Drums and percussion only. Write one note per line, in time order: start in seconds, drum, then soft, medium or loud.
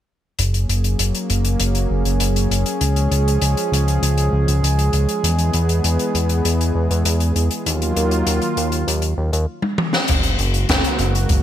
0.39 closed hi-hat loud
0.54 closed hi-hat soft
0.69 closed hi-hat medium
0.84 closed hi-hat soft
0.99 closed hi-hat loud
1.15 closed hi-hat soft
1.30 closed hi-hat medium
1.45 closed hi-hat medium
1.60 closed hi-hat loud
1.75 closed hi-hat soft
2.05 closed hi-hat medium
2.20 closed hi-hat loud
2.36 closed hi-hat medium
2.51 closed hi-hat medium
2.66 closed hi-hat soft
2.81 closed hi-hat medium
2.96 closed hi-hat medium
3.12 closed hi-hat medium
3.28 closed hi-hat medium
3.42 closed hi-hat loud
3.57 closed hi-hat soft
3.73 closed hi-hat medium
3.88 closed hi-hat soft
4.03 closed hi-hat medium
4.18 closed hi-hat medium
4.48 closed hi-hat medium
4.64 closed hi-hat medium
4.79 closed hi-hat medium
4.93 closed hi-hat medium
5.09 closed hi-hat soft
5.24 closed hi-hat loud
5.38 closed hi-hat soft
5.53 closed hi-hat medium
5.69 closed hi-hat medium
5.84 closed hi-hat medium
5.99 closed hi-hat medium
6.15 closed hi-hat medium
6.29 closed hi-hat soft
6.45 closed hi-hat loud
6.61 closed hi-hat medium
6.91 closed hi-hat medium
7.05 closed hi-hat loud
7.20 closed hi-hat medium
7.36 closed hi-hat medium
7.51 closed hi-hat medium
7.66 closed hi-hat medium
7.82 closed hi-hat medium
7.96 closed hi-hat medium
8.11 closed hi-hat medium
8.27 closed hi-hat medium
8.42 closed hi-hat soft
8.57 closed hi-hat medium
8.72 closed hi-hat medium
8.88 closed hi-hat medium
9.02 closed hi-hat soft
9.33 closed hi-hat medium
9.62 high tom soft
9.78 mid tom medium
9.93 snare medium
10.08 kick loud
10.08 closed hi-hat loud
10.08 crash loud
10.23 closed hi-hat medium
10.39 closed hi-hat medium
10.54 closed hi-hat medium
10.69 kick loud
10.69 snare loud
10.69 closed hi-hat loud
10.84 closed hi-hat medium
10.99 closed hi-hat medium
11.15 closed hi-hat medium
11.29 kick loud
11.29 closed hi-hat medium